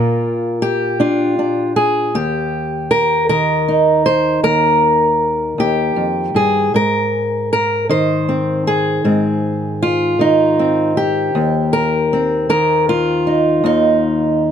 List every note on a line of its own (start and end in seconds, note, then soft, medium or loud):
0.00 2.14 A#2 medium
0.00 0.62 F4 soft
0.00 1.00 A#4 medium
0.62 1.77 G4 medium
1.00 1.38 D4 medium
1.00 1.76 F4 medium
1.39 2.10 D4 soft
1.76 2.15 G#4 medium
2.14 4.42 D#2 medium
2.14 3.68 G4 medium
2.91 3.28 A#4 medium
3.29 6.75 D#3 medium
3.29 4.05 A#4 medium
3.68 5.59 D#4 soft
4.06 4.43 C5 medium
4.43 5.57 D#2 medium
4.43 6.36 A#4 loud
5.58 5.96 D#2 medium
5.58 6.75 G4 medium
5.96 6.34 F2 medium
6.34 6.74 G2 medium
6.34 6.75 G#4 medium
6.74 9.01 G#2 medium
6.74 7.51 A#4 medium
7.53 7.90 A#4 medium
7.89 10.18 D#3 medium
7.89 9.44 C5 medium
8.29 9.05 C4 soft
8.67 10.20 G#4 medium
9.04 11.30 G#2 medium
9.04 10.59 C4 soft
9.83 10.97 F4 medium
10.19 12.49 D#3 medium
10.19 10.97 D#4 medium
10.59 11.76 C4 soft
10.97 12.50 G4 medium
11.35 13.63 D#2 medium
11.73 12.49 A#4 medium
12.13 13.61 C4 soft
12.49 14.52 D#3 medium
12.49 12.88 A#4 medium
12.89 14.42 F4 medium
13.27 13.65 D#4 soft
13.64 14.52 D#2 medium
13.64 14.52 D#4 medium